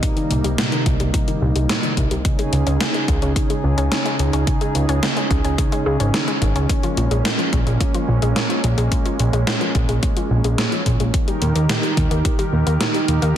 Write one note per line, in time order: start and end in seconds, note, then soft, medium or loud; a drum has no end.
0.00 0.09 A#2 medium
0.00 2.21 C3 medium
0.00 2.21 G3 medium
0.00 2.21 A#3 medium
0.00 2.21 D#4 medium
0.00 kick loud
0.00 closed hi-hat medium
0.17 0.28 D#3 medium
0.17 closed hi-hat soft
0.30 0.42 C2 medium
0.30 0.37 A#2 medium
0.30 closed hi-hat medium
0.44 0.55 C2 medium
0.44 0.51 G3 medium
0.44 closed hi-hat soft
0.58 0.65 A#2 medium
0.58 snare loud
0.58 closed hi-hat medium
0.72 0.83 D#3 medium
0.72 closed hi-hat soft
0.86 0.97 C2 medium
0.86 0.93 A#2 medium
0.86 kick loud
0.86 closed hi-hat medium
1.00 1.11 C2 medium
1.00 1.07 G3 medium
1.00 closed hi-hat soft
1.14 1.21 A#2 medium
1.14 kick loud
1.14 closed hi-hat medium
1.28 1.39 D#3 medium
1.28 closed hi-hat soft
1.42 1.53 C2 medium
1.42 1.48 A#2 medium
1.56 1.67 C2 medium
1.56 1.62 G3 medium
1.56 closed hi-hat soft
1.69 1.76 A#2 medium
1.69 snare loud
1.69 closed hi-hat medium
1.83 1.94 D#3 medium
1.83 closed hi-hat soft
1.97 2.08 C2 medium
1.97 2.04 A#2 medium
1.97 kick medium
1.97 closed hi-hat medium
2.11 2.22 C2 medium
2.11 2.18 G3 medium
2.11 closed hi-hat soft
2.25 6.65 C#3 medium
2.25 2.32 C#3 medium
2.25 11.10 C#4 medium
2.25 6.65 D#4 medium
2.25 6.65 G#4 medium
2.25 kick loud
2.25 closed hi-hat medium
2.39 2.50 G#3 medium
2.39 closed hi-hat soft
2.53 2.64 C#2 medium
2.53 2.59 C#3 medium
2.53 closed hi-hat medium
2.67 2.78 C#2 medium
2.67 2.73 C#4 medium
2.67 closed hi-hat soft
2.81 2.87 C#3 medium
2.81 snare loud
2.81 closed hi-hat medium
2.94 3.06 G#3 medium
2.94 closed hi-hat soft
3.08 3.19 C#2 medium
3.08 3.15 C#3 medium
3.08 kick loud
3.08 closed hi-hat medium
3.22 3.33 C#2 medium
3.22 3.29 C#4 medium
3.22 closed hi-hat soft
3.36 3.43 C#3 medium
3.36 kick loud
3.36 closed hi-hat medium
3.50 3.61 G#3 medium
3.50 closed hi-hat soft
3.64 3.75 C#2 medium
3.64 3.71 C#3 medium
3.78 3.89 C#2 medium
3.78 3.84 C#4 medium
3.78 closed hi-hat soft
3.92 3.98 C#3 medium
3.92 snare loud
3.92 closed hi-hat medium
4.06 4.17 G#3 medium
4.06 closed hi-hat soft
4.19 4.30 C#2 medium
4.19 4.26 C#3 medium
4.19 closed hi-hat medium
4.33 4.44 C#2 medium
4.33 4.40 C#4 medium
4.33 closed hi-hat soft
4.47 4.54 C#3 medium
4.47 kick loud
4.47 closed hi-hat medium
4.61 4.72 G#3 medium
4.61 closed hi-hat soft
4.75 4.86 C#2 medium
4.75 4.82 C#3 medium
4.75 closed hi-hat medium
4.89 5.00 C#2 medium
4.89 4.96 C#4 medium
4.89 closed hi-hat soft
5.03 5.09 C#3 medium
5.03 snare loud
5.03 closed hi-hat medium
5.17 5.28 G#3 medium
5.17 closed hi-hat soft
5.31 5.42 C#2 medium
5.31 5.37 C#3 medium
5.31 kick loud
5.31 closed hi-hat medium
5.44 5.56 C#2 medium
5.44 5.51 C#4 medium
5.44 closed hi-hat soft
5.58 5.65 C#3 medium
5.58 kick loud
5.58 closed hi-hat medium
5.72 5.83 G#3 medium
5.72 closed hi-hat soft
5.86 5.97 C#2 medium
5.86 5.97 G#3 loud
6.00 6.11 G#1 medium
6.00 6.11 C#4 medium
6.00 closed hi-hat soft
6.14 6.25 D#3 medium
6.14 snare loud
6.14 closed hi-hat medium
6.28 6.39 G#3 loud
6.28 closed hi-hat soft
6.42 6.53 G#1 medium
6.42 6.55 D#3 medium
6.42 kick medium
6.42 closed hi-hat medium
6.56 6.67 C#2 medium
6.56 6.67 C#4 medium
6.56 closed hi-hat soft
6.69 6.76 A#2 medium
6.69 11.10 G#3 medium
6.69 11.10 A#3 medium
6.69 kick loud
6.69 closed hi-hat medium
6.83 6.95 F3 medium
6.83 closed hi-hat soft
6.97 7.08 A#1 medium
6.97 7.04 A#2 medium
6.97 closed hi-hat medium
7.11 7.22 A#1 medium
7.11 7.18 G#3 medium
7.11 closed hi-hat soft
7.25 7.32 A#2 medium
7.25 snare loud
7.25 closed hi-hat medium
7.39 7.50 F3 medium
7.39 closed hi-hat soft
7.53 7.64 A#1 medium
7.53 7.59 A#2 medium
7.53 kick loud
7.53 closed hi-hat medium
7.67 7.78 A#1 medium
7.67 7.73 G#3 medium
7.67 closed hi-hat soft
7.81 7.87 A#2 medium
7.81 kick loud
7.81 closed hi-hat medium
7.94 8.06 F3 medium
7.94 closed hi-hat soft
8.08 8.19 A#1 medium
8.08 8.15 A#2 medium
8.22 8.33 A#1 medium
8.22 8.29 G#3 medium
8.22 closed hi-hat soft
8.36 8.43 A#2 medium
8.36 snare loud
8.36 closed hi-hat medium
8.50 8.61 F3 medium
8.50 closed hi-hat soft
8.64 8.75 A#1 loud
8.64 8.71 A#2 medium
8.64 closed hi-hat medium
8.78 8.89 A#1 medium
8.78 8.84 G#3 medium
8.78 closed hi-hat soft
8.92 8.98 A#2 medium
8.92 kick loud
8.92 closed hi-hat medium
9.06 9.17 F3 medium
9.06 closed hi-hat soft
9.19 9.31 A#1 medium
9.19 9.26 A#2 medium
9.19 closed hi-hat medium
9.33 9.44 A#1 medium
9.33 9.40 G#3 medium
9.33 closed hi-hat soft
9.47 9.54 A#2 medium
9.47 snare loud
9.47 closed hi-hat medium
9.61 9.72 F3 medium
9.61 closed hi-hat soft
9.75 9.86 A#1 medium
9.75 9.82 A#2 medium
9.75 kick loud
9.75 closed hi-hat medium
9.89 10.00 A#1 medium
9.89 9.96 G#3 medium
9.89 closed hi-hat soft
10.03 10.09 A#2 medium
10.03 kick loud
10.03 closed hi-hat medium
10.17 10.28 F3 medium
10.17 closed hi-hat soft
10.31 10.42 A#1 medium
10.31 10.37 A#2 medium
10.44 10.56 A#1 medium
10.44 10.51 G#3 medium
10.44 closed hi-hat soft
10.58 10.65 A#2 medium
10.58 snare loud
10.58 closed hi-hat medium
10.72 10.83 F3 medium
10.72 closed hi-hat soft
10.86 10.97 A#1 medium
10.86 10.93 A#2 medium
10.86 kick medium
10.86 closed hi-hat medium
11.00 11.11 A#1 medium
11.00 11.07 G#3 medium
11.00 closed hi-hat soft
11.14 11.21 A#2 medium
11.14 13.37 D#3 medium
11.14 13.37 D#4 medium
11.14 13.37 G4 medium
11.14 13.37 A#4 medium
11.14 kick loud
11.14 closed hi-hat medium
11.28 11.39 G3 medium
11.28 closed hi-hat soft
11.42 11.53 D#2 medium
11.42 11.48 A#2 medium
11.42 closed hi-hat medium
11.56 11.67 D#2 medium
11.56 11.62 A#3 medium
11.56 closed hi-hat soft
11.69 11.76 A#2 medium
11.69 snare loud
11.69 closed hi-hat medium
11.83 11.94 G3 medium
11.83 closed hi-hat soft
11.97 12.08 D#2 medium
11.97 12.04 A#2 medium
11.97 kick loud
11.97 closed hi-hat medium
12.11 12.22 D#2 medium
12.11 12.18 A#3 medium
12.11 closed hi-hat soft
12.25 12.32 A#2 medium
12.25 kick loud
12.25 closed hi-hat medium
12.39 12.50 G3 medium
12.39 closed hi-hat soft
12.53 12.64 D#2 medium
12.53 12.59 A#2 medium
12.67 12.78 D#2 medium
12.67 12.73 A#3 medium
12.67 closed hi-hat soft
12.81 12.87 A#2 medium
12.81 snare loud
12.81 closed hi-hat medium
12.94 13.06 G3 medium
12.94 closed hi-hat soft
13.08 13.19 D#2 medium
13.08 13.15 A#2 medium
13.08 closed hi-hat medium
13.22 13.33 D#2 medium
13.22 13.29 A#3 medium
13.22 closed hi-hat soft